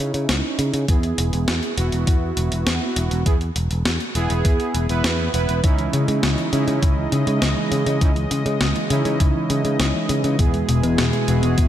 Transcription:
Already playing: C#4 D#4 E4
0.00 C#3
0.14 C#3, closed hi-hat
0.29 C#2, snare, closed hi-hat
0.59 C#3, closed hi-hat
0.74 C#3, closed hi-hat
0.88 E2 B3 E4 G#4, kick, closed hi-hat
1.03 closed hi-hat
1.18 E1, closed hi-hat
1.33 E1, closed hi-hat
1.48 E2, snare, closed hi-hat
1.63 closed hi-hat
1.78 E1 B3 E4 F#4, closed hi-hat
1.92 E1, closed hi-hat
2.07 E2, kick, closed hi-hat
2.37 E1, closed hi-hat
2.52 E1, closed hi-hat
2.67 E2, snare, closed hi-hat
2.96 E1, closed hi-hat
3.11 E1, closed hi-hat
3.26 E2 B3 E4 G#4, kick, closed hi-hat
3.41 closed hi-hat
3.56 E1, closed hi-hat
3.71 E1, closed hi-hat
3.85 E2, snare, closed hi-hat
4.00 closed hi-hat
4.15 E1 B3 E4 G#4, closed hi-hat
4.30 E1, closed hi-hat
4.45 E2, kick, closed hi-hat
4.60 closed hi-hat
4.75 E1, closed hi-hat
4.89 E1 B3 E4 B4, closed hi-hat
5.04 E2, snare, closed hi-hat
5.34 E1 B3 E4 B4, closed hi-hat
5.49 E1, closed hi-hat
5.64 C#2 C#3 E3 G#3 C#4 D#4 E4 D#5, kick, closed hi-hat
5.78 E3, closed hi-hat
5.93 C#3, closed hi-hat
6.08 C#3 G#3, closed hi-hat
6.23 C#2 C#3, snare, closed hi-hat
6.38 E3, closed hi-hat
6.53 C#3 C#4 D#4 E4, closed hi-hat
6.68 C#3 G#3, closed hi-hat
6.82 C#2 C#3, kick, closed hi-hat
6.97 E3
7.12 C#3, closed hi-hat
7.27 C#3 G#3, closed hi-hat
7.42 C#2 C#3, snare, closed hi-hat
7.57 E3
7.72 C#3, closed hi-hat
7.86 C#3 G#3, closed hi-hat
8.01 C#2 C#3 C#4 D#4 E4, kick, closed hi-hat
8.16 E3, closed hi-hat
8.31 C#3, closed hi-hat
8.46 C#3 G#3, closed hi-hat
8.61 C#2 C#3, snare, closed hi-hat
8.75 E3, closed hi-hat
8.90 C#3 C#4 D#4 E4, closed hi-hat
9.05 C#3 G#3, closed hi-hat
9.20 C#2 C#3, kick, closed hi-hat
9.35 E3
9.50 C#3, closed hi-hat
9.65 C#3 G#3, closed hi-hat
9.79 C#2 C#3, snare, closed hi-hat
9.94 E3
10.09 C#3, closed hi-hat
10.24 C#3 G#3, closed hi-hat
10.39 E2 B2 G#3 B3 E4 G#4, kick, closed hi-hat
10.54 G#3, closed hi-hat
10.69 E1 B2, closed hi-hat
10.83 E1 B3, closed hi-hat
10.98 E2 B2, snare, closed hi-hat
11.13 G#3, closed hi-hat
11.28 E1 B2 B3 E4 F#4, closed hi-hat
11.43 E1 B3, closed hi-hat
11.58 E2 B2, kick, closed hi-hat

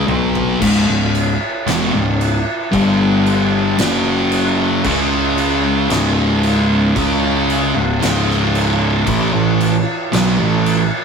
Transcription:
0.07 B1 B2 F#3 B3, mid tom
0.35 floor tom
0.61 C#1 C#2 G#2, kick, crash
0.88 C#1 C#2 G#2
1.15 crash
1.66 E1 E2 B2, snare, crash
1.93 C#1 C#2 G#2
2.21 crash
2.71 G1 G2 D3 G3, kick, crash
3.26 crash
3.78 F#1 F#2 C#3 F#3, snare, crash
4.32 crash
4.84 C#2 C#3 G#3 C#4, kick, crash
5.38 crash
5.89 C#1 C#2 G#2 C#3, snare, crash
6.43 crash
6.96 C#2 C#3 G#3 C#4, kick, crash
7.50 crash
7.75 C#1 C#2 G#2
8.01 C#1 C#2 G#2 C#3, snare, crash
8.30 snare
8.55 crash
9.06 A1 A2 E3, kick, crash
9.33 A1 A2 E3
9.60 crash
10.12 B1 B2 F#3, snare, crash
10.38 A1 A2 E3
10.66 crash

